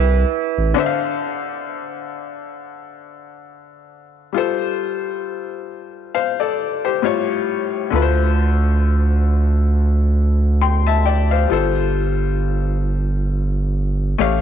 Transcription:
Already playing: C2 E4 B4
0.58 A1
0.74 D3 D4 C5
0.80 E5
0.86 F5
4.33 G3 F4 A4
4.38 C5
6.15 C5 F5
6.40 A4 D5
6.85 G4 C5
7.02 A2 G3 F4 C#5
7.90 D2 D3 A3 F4
7.96 B4
8.02 C5
10.62 G5 C6
10.87 E5 A5
11.06 D5 G5
11.31 C5 F5
11.48 G1 G3 F4 A4
11.53 C5
14.18 A1 A3 G4 C#5 F5

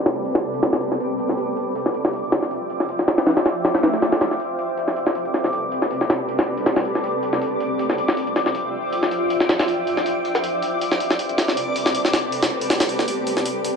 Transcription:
Already playing: C4 G4 A4 B4 D5 D6
0.06 snare, open hi-hat
0.25 open hi-hat
0.35 snare, open hi-hat
0.54 open hi-hat
0.63 snare, open hi-hat
0.73 snare, open hi-hat
0.81 open hi-hat
0.92 snare
1.00 open hi-hat
1.19 open hi-hat
1.29 snare
1.38 F4 C5 D5 E5 G5, open hi-hat
1.57 open hi-hat
1.76 open hi-hat
1.86 snare
1.94 open hi-hat
2.05 snare
2.13 open hi-hat
2.23 closed hi-hat
2.32 snare, open hi-hat
2.42 snare
2.51 open hi-hat
2.70 open hi-hat
2.80 snare
2.89 open hi-hat
2.99 snare
3.08 snare, open hi-hat
3.18 snare, open hi-hat
3.27 snare, open hi-hat
3.37 snare, open hi-hat
3.45 snare, open hi-hat
3.64 snare, open hi-hat, swell
3.75 snare, open hi-hat
3.83 snare, open hi-hat
3.94 snare
4.02 snare, open hi-hat
4.12 snare, open hi-hat
4.21 snare, open hi-hat
4.31 snare
4.40 C4 G4 A4 B4 D5 D6, open hi-hat
4.59 open hi-hat
4.77 open hi-hat
4.88 snare
4.96 open hi-hat
5.06 snare
5.15 open hi-hat
5.25 closed hi-hat
5.34 snare, open hi-hat
5.44 snare
5.53 open hi-hat
5.72 open hi-hat
5.82 snare
5.91 open hi-hat
6.01 snare
6.10 snare, open hi-hat
6.29 open hi-hat
6.39 snare, open hi-hat
6.57 open hi-hat
6.66 snare, open hi-hat
6.76 snare, open hi-hat
6.85 open hi-hat
6.95 snare
7.04 open hi-hat
7.23 open hi-hat
7.33 snare
7.42 F4 C5 D5 E5 G5, open hi-hat
7.60 open hi-hat
7.79 open hi-hat
7.89 snare
7.98 open hi-hat
8.08 snare
8.17 open hi-hat
8.27 closed hi-hat
8.36 snare, open hi-hat
8.46 snare
8.55 open hi-hat
8.93 open hi-hat
9.03 snare
9.11 open hi-hat
9.30 open hi-hat
9.40 snare
9.49 snare, open hi-hat
9.59 snare, open hi-hat
9.68 open hi-hat
9.87 open hi-hat
9.97 snare
10.06 open hi-hat
10.25 open hi-hat
10.35 snare
10.44 C4 G4 A4 B4 D5, open hi-hat
10.62 open hi-hat
10.81 open hi-hat
10.92 snare
11.00 open hi-hat
11.10 snare
11.19 open hi-hat
11.29 closed hi-hat
11.38 snare, open hi-hat
11.48 snare
11.57 open hi-hat
11.76 open hi-hat
11.86 snare
11.95 open hi-hat
12.05 snare
12.13 snare, open hi-hat
12.32 open hi-hat
12.43 snare, open hi-hat
12.61 open hi-hat
12.70 snare, open hi-hat
12.80 snare, open hi-hat
12.89 open hi-hat
12.99 snare
13.08 open hi-hat
13.27 open hi-hat
13.37 snare
13.46 open hi-hat
13.64 open hi-hat

